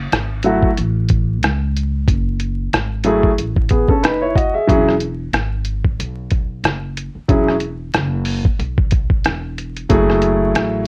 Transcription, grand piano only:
0.44 F#3 A3 E4 F#4
3.04 F#3 A3 E4 G#4
3.70 B3 G#4
3.89 C#4 A4
4.03 D#4 B4
4.21 E4 C#5
4.35 F#4 D#5
4.54 G#4 E5
4.67 F#3 C#4 E4 G#4
7.28 F#3 C#4 E4 G#4
9.89 F#3 A3 E4 G#4

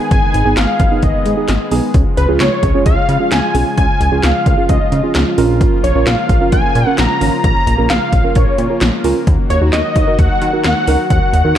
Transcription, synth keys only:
0.34 D#4 G#4
0.45 B3 D#4 G#4
0.80 D#4 G#4
0.91 B3 D#4 G#4
1.26 D#4 G#4
1.37 B3 D#4 G#4
1.71 B3 D#4 G#4
2.17 F4 G#4
2.29 C#4 F4 G#4
2.63 F4 G#4
2.75 C#4 F4 G#4
3.09 F4 G#4
3.20 C#4 F4 G#4
3.55 C#4 F4 G#4
4.00 F4 G#4
4.12 C#4 F4 G#4
4.46 F4 A#4
4.58 C#4 F4 G#4
4.92 F4 G#4
5.03 C#4 F4 G#4
5.38 C#4 F4 A#4
5.84 F4 A#4
5.95 C#4 F4 A#4
6.29 F4 A#4
6.41 C#4 F4 A#4
6.75 F4 A#4
6.87 C#4 F4 A#4
7.21 C#4 F4 A#4
7.67 F4 A#4
7.78 C#4 F4 A#4
8.13 F4 A#4
8.24 C#4 F4 A#4
8.59 F4 A#4
8.70 C#4 F4 A#4
9.04 C#4 F4 A#4
9.50 F#4 A#4
9.62 D#4 F#4 A#4
9.96 F#4 A#4
10.07 D#4 F#4 A#4
10.42 F#4 A#4
10.53 D#4 F#4 A#4
10.88 D#4 F#4 A#4
11.33 F#4 A#4
11.45 D#4 F#4 A#4

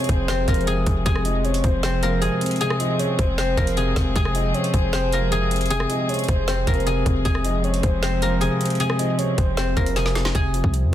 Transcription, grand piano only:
Already playing: C3 F3 C4 C5
0.10 C5
0.29 C3
0.48 F3
0.67 C3
0.87 C4
1.06 C3
1.25 F3
1.45 C4
1.64 C5
1.83 C3
2.03 F3
2.22 C3
2.42 C4
2.61 C3
2.81 F3
3.00 C4
3.19 C5
3.38 C3
3.58 F3
3.77 C3
3.97 C4
4.16 C3
4.35 F3
4.54 C4
4.74 C5
4.93 C3
5.13 F3
5.32 C3
5.51 C4
5.70 C3
5.90 F3
6.09 C4
6.29 C5
6.48 C3
6.67 F3
6.86 C3
7.06 C4
7.25 C3
7.44 F3
7.64 C4
7.84 C5
8.03 C3
8.23 F3
8.42 C3
8.61 C4
8.80 C3
9.00 F3
9.19 C4
9.38 C5
9.57 C3
9.77 F3
9.97 C3
10.16 C4
10.35 C3
10.54 F3
10.73 C4

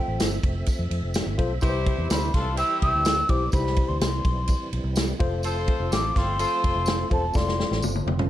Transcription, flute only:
Already playing: G5
2.11 B5
2.34 C6
2.58 E6
2.82 E6
3.30 D6
3.53 B5
3.88 C6
4.01 C6
5.93 D6
6.18 C6
7.12 A5
7.37 C6

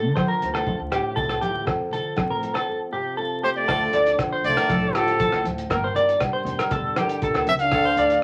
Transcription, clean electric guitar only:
Already playing: A4
0.16 C5
0.28 A#4
0.54 A4
0.92 G4
1.16 A4
1.41 G4
1.67 muted clean electric guitar stroke
1.93 A4
2.31 A#4
2.54 A4
2.93 G4
3.17 A4
3.43 G4
3.68 A4
3.94 D5
4.33 C5
4.57 A#4
4.70 A4
4.95 G4
5.20 A4
5.71 A#4
5.84 C5
5.96 D5
6.33 C5
6.59 A#4
6.72 A4
6.98 G4
7.24 A4
7.74 A4
7.85 C5
7.98 D5

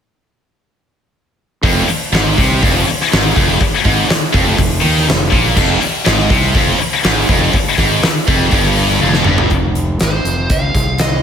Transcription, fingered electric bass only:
1.63 F1
1.87 muted fingered electric bass stroke
2.12 G#1
2.38 C2
2.63 F1
2.88 muted fingered electric bass stroke
3.13 G#1
3.37 F1
3.61 muted fingered electric bass stroke
3.85 G#1
4.08 muted fingered electric bass stroke
4.34 F1
4.58 F1
4.84 D#2
5.09 F1
5.32 A#1
5.56 F1
5.82 muted fingered electric bass stroke
6.07 G#1
6.30 C2
6.55 F1
6.79 muted fingered electric bass stroke
7.05 G#1
7.29 F1
7.54 muted fingered electric bass stroke
7.78 G#1
8.04 muted fingered electric bass stroke
8.28 F1
8.52 G1
9.03 F1
9.26 G1
9.51 F1
10.01 G#1
10.24 F1
10.50 C#2
10.75 C2

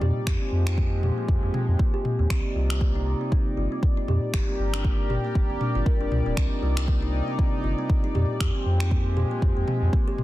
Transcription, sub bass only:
0.01 F2
0.27 F2
0.52 F2
1.28 F2
1.43 F2
1.68 F2
2.19 D#2
2.30 C2
2.56 C2
3.57 G1
4.08 F2
4.34 G1
4.59 G1
5.35 G1
5.50 G1
5.75 G1
6.01 F1
6.11 C2
6.26 D1
6.37 C2
6.62 C2
7.64 G1
8.15 F2
8.40 F2
8.66 F2
9.42 F2
9.57 F2
9.82 F2

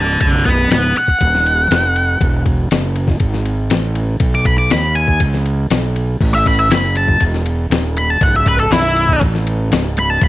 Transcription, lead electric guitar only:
Already playing: F#5 A5
0.20 F#5 A5
0.45 F#5 B5
0.72 F#5 B5
0.98 F#5
4.35 D6
4.46 B5
4.58 D6
4.71 B5
4.95 G#5
6.34 E5
6.47 B5
6.59 E5
6.72 B5
6.97 A5
7.98 B5
8.10 A5
8.23 F#5
8.36 E5
8.48 B4
8.60 A4
8.72 E4
9.99 B5
10.10 A5
10.23 B5

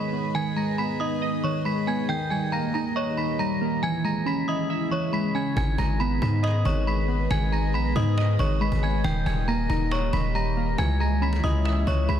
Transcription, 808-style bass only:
5.57 G#1
5.78 G#1
6.22 G#2
6.65 G#1
7.31 G#1
7.74 A#1
7.96 G#2
8.39 G#1
8.72 G#1
9.04 D#1
9.26 D#1
9.70 D#1
10.13 D#1
10.78 C#2
11.44 C#2
11.87 C#2
12.09 C#2

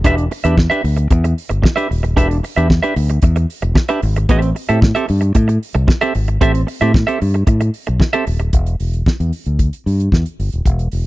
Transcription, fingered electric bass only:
0.05 E1
0.45 E2
0.84 D2
1.11 E2
1.50 G1
1.91 D#1
2.18 E1
2.57 E2
2.96 D2
3.23 E2
3.63 E1
4.03 G#1
4.30 A1
4.69 A2
5.10 G2
5.35 A2
5.75 C2
6.15 G#1
6.42 A1
6.81 A2
7.22 G2
7.47 A2
7.89 B1
8.27 D#1
8.53 E1
8.80 E1
9.20 E2
9.46 D2
9.86 G2
10.12 E2
10.39 G1
10.54 D#1
10.66 E1
10.93 E1

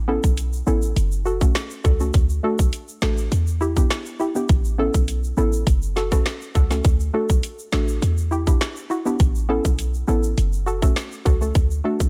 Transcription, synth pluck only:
0.08 B3 C#4 E4 A4
0.67 B3 C#4 E4 A4
1.25 F#4 A4
1.41 A3 C#4 F#4 A4
1.84 F#4 A4
2.00 A3 C#4 F#4 A4
2.43 A3 D4 F#4 A4
3.02 A3 D4 F#4 A4
3.61 E4 G4
3.76 B3 D4 E4 G4
4.20 E4 G4
4.35 B3 D4 E4 G4
4.78 B3 C#4 E4 A4
5.37 B3 C#4 E4 A4
5.96 F#4 A4
6.11 A3 C#4 F#4 A4
6.55 F#4 A4
6.70 A3 C#4 F#4 A4
7.13 A3 D4 F#4 A4
7.72 A3 D4 F#4 A4
8.31 E4 G4
8.47 B3 D4 E4 G4
8.90 E4 F#4
9.05 B3 D4 E4 G4
9.49 B3 C#4 E4 A4
10.07 B3 C#4 E4 A4
10.66 F#4 A4
10.82 A3 C#4 F#4 A4
11.25 F#4 A4
11.41 A3 C#4 F#4 A4
11.84 A3 D4 F#4 A4

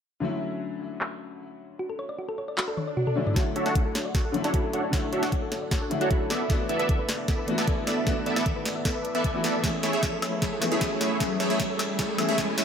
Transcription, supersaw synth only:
3.36 D4 F#4 A4 C#5 F#5
3.56 D4 F#4 A4 C#5 E5
3.66 D4 F#4 A4 C#5 F#5
4.15 D4 F#4 A4 C#5 F#5
4.44 D4 F#4 A4 C#5 F#5
4.54 D4 F#4 A4 C#5 B5
4.73 D4 F#4 A4 C#5 F#5
4.93 D4 F#4 A4 C#5 F#5
5.13 D4 F#4 A4 C#5 E5
5.23 D4 F#4 A4 C#5 F#5
5.71 D4 F#4 A4 C#5 F#5
6.01 D4 F#4 A4 C#5 F#5
6.11 D4 A4 C#5 B5
6.30 B3 E4 A4 D5 E5
6.50 B3 E4 A4 D5 E5
6.69 B3 E4 A4 D5 E5
6.79 B3 E4 A4 D5 E5
7.28 B3 E4 A4 D5 E5
7.58 B3 E4 A4 D5 E5
7.67 B3 E4 A4 D5 G#5
7.87 B3 E4 A4 D5 E5
8.07 B3 E4 A4 D5 E5
8.26 B3 E4 A4 D5 E5
8.36 B3 E4 A4 D5 E5
8.85 B3 E4 A4 D5 E5
9.15 B3 E4 A4 D5 E5
9.24 B3 E4 A4 D5 G#5
9.44 B3 E4 A4 D5 E5
9.64 A3 E4 G#4 C#5 E5
9.83 A3 E4 G#4 C#5 E5
9.93 A3 E4 G#4 C#5 E5
10.42 A3 E4 G#4 C#5 E5
10.72 A3 E4 G#4 C#5 E5
10.81 E4 G#4 C#5
11.01 A3 E4 G#4 C#5 E5
11.20 A3 E4 G#4 C#5 E5
11.40 A3 E4 G#4 C#5 E5
11.50 A3 E4 G#4 C#5 E5
11.99 A3 E4 G#4 C#5 E5
12.29 A3 E4 G#4 C#5 E5
12.38 A3 E4 G#4 C#5 G#5
12.58 A3 E4 G#4 C#5 E5

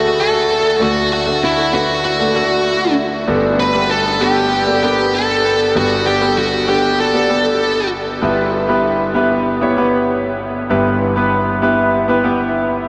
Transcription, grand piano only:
Already playing: D2 D3 A3 D4 F#4 G#4 A4
0.79 D2 D3 A3 D4 F#4 A4
1.26 A3 D4 F#4 A4
1.72 A3 D4 F#4 B4
2.19 A3 D4 F#4 A4
2.35 A3 D4 F#4 A4
3.27 G1 G2 B3 D4 G4 A4
3.74 B3 D4 G4 A4
4.20 B3 D4 G4 A4
4.66 B3 D4 G4 A4
4.82 B3 D4 G4 A#4
4.90 B4
5.75 G1 G2 G3 B3 D4 A4
6.21 B3 D4 G4 A4
6.67 B3 D4 G4 A4
7.13 B3 D4 G4 A4
7.29 B3 D4 G4 A4
8.22 G1 G2 B3 E4 G4 B4
8.68 B3 E4 G4 B4
9.14 B3 E4 G4 B4
9.61 B3 E4 G4 C#5
9.77 B3 E4 G4 B4
10.70 G1 G2 B3 E4 G4 B4
11.16 B3 E4 G4 B4
11.62 B3 E4 G4 B4
12.08 B3 E4 G4 B4
12.24 B3 E4 G4 B4

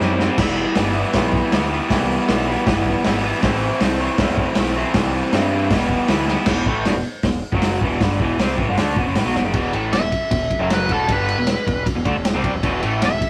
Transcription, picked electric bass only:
0.01 F#2
0.38 E1
0.76 G1
1.14 B1
1.53 D2
1.91 C2
2.29 B1
2.67 G1
3.06 G#1
3.43 A1
3.82 C2
4.18 E2
4.57 B1
4.95 C2
5.33 G2
5.71 E1
6.09 D2
6.47 E1
6.67 A1
6.87 E1
6.96 E1
7.05 muted picked electric bass stroke
7.23 E1
7.53 F#1
7.81 E1
8.01 G1
8.20 E1
8.39 C2
8.58 A1
8.69 G1
8.78 D2
8.97 E1
9.06 F#1
9.16 A1
9.25 B1
9.35 E1
9.44 F#1
9.54 E1
9.73 A1
9.93 E1
10.03 E1
10.12 muted picked electric bass stroke
10.31 E1
10.60 F#1
10.89 E1
11.09 G1
11.38 E1
11.67 E1
11.86 muted picked electric bass stroke
11.96 E1
12.06 D2
12.16 E1
12.35 C2
12.54 E1
12.64 E1
12.84 A1
13.03 E1
13.13 E1
13.21 muted picked electric bass stroke

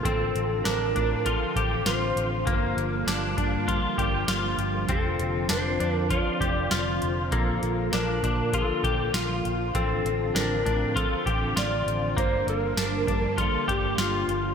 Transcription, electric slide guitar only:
0.03 A4
0.64 A#4
1.25 A4
1.86 C5
4.92 A4
5.51 C5
5.94 A#4
6.12 D5
7.33 A4
7.94 A#4
8.55 A4
9.15 F4
9.76 A4
10.37 A#4
10.97 A4
11.58 D5
12.19 C5
12.49 A#4
13.41 A4
13.71 G4
14.01 F4

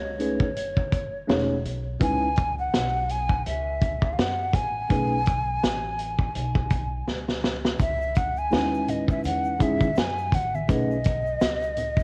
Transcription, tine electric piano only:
0.19 A3 C#4 D#4 G#4 B4
1.27 A3 C#4 D#4 G#4 C#5
2.00 G#3 C#4 D#4 E4 B4
4.89 A3 C#4 D#4 G#4 B4
8.51 G#3 C#4 D#4 E4 B4
9.59 G#3 C#4 D#4 E4 G#4
10.68 A3 C#4 D#4 G#4 B4

